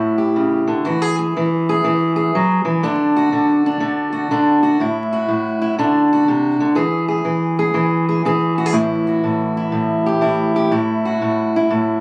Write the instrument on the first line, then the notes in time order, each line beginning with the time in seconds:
steel-string acoustic guitar
Already playing: A2 E4 F#4
0.18 G4
0.36 C#3
0.67 D3
0.85 E3 F#4
1.02 G#4
1.19 G#4
1.37 E3
1.69 G#4
1.84 E3
2.16 G#4
2.35 F#3
2.65 E3
2.83 D3 D4
3.16 F#4
3.32 D3
3.66 D4
3.80 D3
4.12 F#4
4.31 D3 D4
4.63 F#4
4.80 A2 E4
5.13 F#4
5.28 A2
5.62 E4
5.78 D3 D4
6.13 F#4
6.28 C3
6.60 D3
6.75 E3 G#4
7.08 G#4
7.25 E3
7.59 G#4
7.74 E3
8.09 G#4
8.25 E3 G#4
8.58 F#4
8.66 G#4
8.72 A2 E4
9.07 F#4
9.24 A2
9.57 E4
9.72 A2
10.06 G4
10.21 A2 E4
10.56 G4
10.71 A2 E4
11.05 F#4
11.22 A2
11.56 E4
11.70 A2